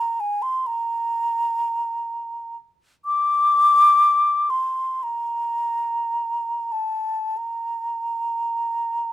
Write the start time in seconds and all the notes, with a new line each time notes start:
Already playing: A#5
0.20 G#5
0.42 C6
0.67 A#5
3.05 D6
4.50 C6
5.03 A#5
6.72 A5
7.37 A#5